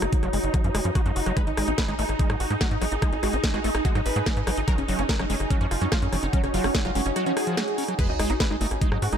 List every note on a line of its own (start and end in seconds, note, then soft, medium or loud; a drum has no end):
0.00 0.08 F#1 medium
0.00 0.06 C#4 medium
0.00 8.00 D#4 medium
0.00 2.43 F#4 medium
0.00 2.63 C#5 medium
0.00 9.18 G#5 loud
0.00 cross-stick medium
0.00 closed hi-hat soft
0.13 kick loud
0.13 closed hi-hat medium
0.23 0.29 F#1 medium
0.23 0.29 F#3 loud
0.23 cross-stick soft
0.23 closed hi-hat soft
0.33 0.39 F#1 loud
0.33 0.39 G#3 medium
0.33 open hi-hat loud
0.44 0.50 F#1 medium
0.44 closed hi-hat soft
0.54 0.63 F#3 medium
0.54 kick loud
0.54 cross-stick soft
0.54 closed hi-hat medium
0.64 0.70 F#2 medium
0.64 0.70 F3 medium
0.64 closed hi-hat soft
0.75 0.81 F#1 loud
0.75 0.81 G#3 loud
0.75 cross-stick medium
0.75 open hi-hat loud
0.85 0.91 F#2 medium
0.85 0.91 F3 medium
0.85 closed hi-hat soft
0.95 1.01 F#4 loud
0.95 kick loud
0.95 cross-stick soft
0.95 closed hi-hat medium
1.06 1.12 F#2 medium
1.06 1.12 F#3 loud
1.06 closed hi-hat soft
1.16 1.22 F#1 loud
1.16 1.22 F#4 medium
1.16 open hi-hat loud
1.26 1.33 F#1 medium
1.26 1.32 F#3 loud
1.26 cross-stick soft
1.26 closed hi-hat soft
1.37 1.46 G#3 medium
1.37 5.92 G#4 loud
1.37 1.41 B4 loud
1.37 kick loud
1.37 cross-stick soft
1.37 closed hi-hat medium
1.47 1.53 G#1 medium
1.47 1.52 D#4 medium
1.47 5.21 D#5 medium
1.47 closed hi-hat soft
1.57 1.64 G#1 loud
1.57 1.69 G#3 medium
1.57 1.62 D#4 medium
1.57 cross-stick medium
1.57 open hi-hat loud
1.68 1.74 G#1 medium
1.68 1.71 D#4 medium
1.68 1.73 D#4 medium
1.68 closed hi-hat soft
1.78 1.83 B4 medium
1.78 kick loud
1.78 cross-stick soft
1.78 snare loud
1.78 closed hi-hat medium
1.88 1.95 G#1 medium
1.88 1.94 G#3 loud
1.88 1.93 D#4 medium
1.88 closed hi-hat soft
1.99 2.05 G#1 loud
1.99 2.05 A3 medium
1.99 2.04 D#4 medium
1.99 open hi-hat loud
2.09 2.15 G#1 medium
2.09 cross-stick soft
2.09 closed hi-hat soft
2.19 2.28 G#3 medium
2.19 2.24 D#4 medium
2.19 kick loud
2.19 closed hi-hat medium
2.30 2.36 G#2 medium
2.30 2.36 F#3 medium
2.30 2.35 D#4 medium
2.30 cross-stick medium
2.30 closed hi-hat soft
2.40 2.46 G#1 loud
2.40 2.45 F#4 medium
2.40 open hi-hat loud
2.50 2.57 G#2 medium
2.50 2.54 G#3 medium
2.50 2.55 D#4 medium
2.50 cross-stick soft
2.50 closed hi-hat soft
2.61 2.67 F#3 medium
2.61 2.66 F#4 loud
2.61 kick loud
2.61 snare loud
2.61 closed hi-hat medium
2.71 2.77 G#2 medium
2.71 2.76 D#4 medium
2.71 closed hi-hat soft
2.81 2.88 G#1 loud
2.81 2.85 F#3 loud
2.81 2.86 D#4 medium
2.81 cross-stick soft
2.81 open hi-hat loud
2.92 2.98 G#1 medium
2.92 2.95 D#4 medium
2.92 closed hi-hat medium
3.02 3.11 G#3 medium
3.02 3.07 D#4 medium
3.02 kick loud
3.02 cross-stick medium
3.02 closed hi-hat medium
3.13 3.19 G#1 medium
3.13 3.17 D#4 medium
3.13 closed hi-hat soft
3.23 3.29 G#1 loud
3.23 3.35 G#3 medium
3.23 3.28 F#4 medium
3.23 cross-stick soft
3.23 open hi-hat loud
3.33 3.39 G#1 medium
3.33 3.38 D#4 medium
3.33 3.37 D#4 medium
3.33 closed hi-hat medium
3.44 3.48 D#4 medium
3.44 kick loud
3.44 snare loud
3.44 closed hi-hat medium
3.54 3.60 G#1 medium
3.54 3.60 G#3 loud
3.54 3.59 F#4 medium
3.54 cross-stick soft
3.54 closed hi-hat soft
3.64 3.70 G#1 loud
3.64 3.70 A3 medium
3.64 3.69 D#4 medium
3.64 open hi-hat loud
3.75 3.81 G#1 medium
3.75 3.79 D#4 medium
3.75 cross-stick medium
3.75 closed hi-hat medium
3.85 3.94 G#3 medium
3.85 3.90 F#4 medium
3.85 kick loud
3.85 closed hi-hat medium
3.95 4.02 G#2 medium
3.95 4.01 F#3 medium
3.95 4.00 D#4 medium
3.95 cross-stick soft
3.95 closed hi-hat soft
4.06 4.12 G#1 loud
4.06 4.59 B4 loud
4.06 open hi-hat loud
4.16 4.22 G#2 medium
4.16 4.20 G#3 medium
4.16 closed hi-hat medium
4.26 4.32 F#3 medium
4.26 kick loud
4.26 cross-stick soft
4.26 snare loud
4.26 closed hi-hat medium
4.37 4.43 G#2 medium
4.37 closed hi-hat soft
4.47 4.53 G#1 loud
4.47 4.51 F#3 loud
4.47 cross-stick medium
4.47 open hi-hat loud
4.57 4.64 G#1 medium
4.57 4.61 D#4 medium
4.57 closed hi-hat medium
4.68 4.77 F#3 medium
4.68 9.18 F#4 medium
4.68 4.72 A#4 loud
4.68 kick loud
4.68 cross-stick soft
4.68 closed hi-hat medium
4.78 4.84 F#1 medium
4.78 4.83 C#4 medium
4.78 8.91 C#5 medium
4.78 closed hi-hat soft
4.88 4.95 F#1 loud
4.88 5.00 F#3 medium
4.88 4.93 C#4 medium
4.88 open hi-hat loud
4.99 5.05 F#1 medium
4.99 5.04 C#4 medium
4.99 5.02 C#4 medium
4.99 cross-stick soft
4.99 closed hi-hat medium
5.09 5.14 A#4 medium
5.09 kick loud
5.09 snare loud
5.09 closed hi-hat medium
5.19 5.26 F#1 medium
5.19 5.25 F#3 loud
5.19 5.24 C#4 medium
5.19 cross-stick medium
5.19 closed hi-hat soft
5.30 5.36 F#1 loud
5.30 5.36 G#3 medium
5.30 5.35 C#4 medium
5.30 open hi-hat loud
5.40 5.46 F#1 medium
5.40 cross-stick soft
5.40 closed hi-hat medium
5.50 5.59 F#3 medium
5.50 5.55 C#4 medium
5.50 kick loud
5.50 closed hi-hat medium
5.61 5.67 F#2 medium
5.61 5.67 F3 medium
5.61 5.66 C#4 medium
5.61 closed hi-hat soft
5.71 5.77 F#1 loud
5.71 5.76 F4 medium
5.71 cross-stick soft
5.71 open hi-hat loud
5.82 5.88 F#2 medium
5.82 5.85 F#3 medium
5.82 5.86 C#4 medium
5.82 closed hi-hat medium
5.92 5.98 F3 medium
5.92 5.97 F4 loud
5.92 kick loud
5.92 cross-stick medium
5.92 snare loud
5.92 closed hi-hat medium
6.02 6.08 F#2 medium
6.02 6.07 C#4 medium
6.02 closed hi-hat soft
6.13 6.19 F#1 loud
6.13 6.16 F3 loud
6.13 6.17 C#4 medium
6.13 cross-stick soft
6.13 open hi-hat loud
6.23 6.29 F#1 medium
6.23 6.26 C#4 medium
6.23 closed hi-hat medium
6.33 6.42 F#3 medium
6.33 6.38 C#4 medium
6.33 kick loud
6.33 closed hi-hat medium
6.44 6.50 F#1 medium
6.44 6.48 C#4 medium
6.44 cross-stick soft
6.44 closed hi-hat soft
6.54 6.60 F#1 loud
6.54 6.66 F#3 medium
6.54 6.59 F4 medium
6.54 open hi-hat loud
6.64 6.70 F#1 medium
6.64 6.68 C#4 medium
6.64 6.69 C#4 medium
6.64 cross-stick medium
6.64 open hi-hat medium
6.75 6.79 C#4 medium
6.75 kick loud
6.75 snare loud
6.75 closed hi-hat medium
6.85 6.91 F#1 medium
6.85 6.91 F#3 loud
6.85 6.90 F4 loud
6.85 cross-stick soft
6.85 closed hi-hat soft
6.95 7.02 F#1 loud
6.95 7.01 G#3 medium
6.95 7.00 C#4 medium
6.95 open hi-hat loud
7.06 7.12 F#1 medium
7.06 7.10 C#4 medium
7.06 closed hi-hat medium
7.16 7.25 F#3 medium
7.16 7.21 F#4 medium
7.16 cross-stick soft
7.16 closed hi-hat medium
7.26 7.32 F3 medium
7.26 7.31 C#4 medium
7.26 closed hi-hat soft
7.37 7.90 G#4 loud
7.37 cross-stick medium
7.37 open hi-hat loud
7.47 7.56 F3 loud
7.47 closed hi-hat medium
7.57 7.63 F#3 loud
7.57 cross-stick soft
7.57 snare loud
7.57 closed hi-hat medium
7.68 closed hi-hat soft
7.78 7.84 C#4 medium
7.78 open hi-hat loud
7.88 7.94 F#3 medium
7.88 cross-stick soft
7.88 closed hi-hat medium
7.99 8.08 G#3 medium
7.99 9.18 C#4 medium
7.99 9.18 G#4 medium
7.99 8.04 B4 loud
7.99 kick loud
7.99 cross-stick soft
7.99 closed hi-hat medium
7.99 crash loud
7.99 sub drop medium
8.04 9.18 D#5 medium
8.09 8.15 G#1 medium
8.09 8.14 D#4 medium
8.19 8.26 G#1 loud
8.19 8.31 G#3 medium
8.19 8.24 D#4 medium
8.19 cross-stick medium
8.19 open hi-hat loud
8.30 8.36 G#1 medium
8.30 8.33 D#4 medium
8.30 8.35 D#4 medium
8.30 closed hi-hat medium
8.40 8.45 B4 loud
8.40 kick loud
8.40 cross-stick soft
8.40 snare loud
8.40 closed hi-hat medium
8.50 8.57 G#1 medium
8.50 8.56 G#3 loud
8.50 8.55 D#4 medium
8.61 8.67 G#1 loud
8.61 8.67 A3 medium
8.61 8.66 D#4 medium
8.61 open hi-hat loud
8.71 8.77 G#1 medium
8.71 cross-stick soft
8.71 closed hi-hat medium
8.82 8.91 G#3 medium
8.82 8.86 D#4 medium
8.82 kick loud
8.82 closed hi-hat medium
8.92 8.98 G#2 medium
8.92 8.98 F#3 medium
8.92 8.97 D#4 medium
8.92 cross-stick medium
9.02 9.08 G#2 loud
9.02 9.07 F#4 medium
9.02 open hi-hat loud
9.13 9.18 G#1 medium
9.13 9.16 G#3 medium
9.13 9.17 D#4 medium
9.13 cross-stick soft
9.13 closed hi-hat medium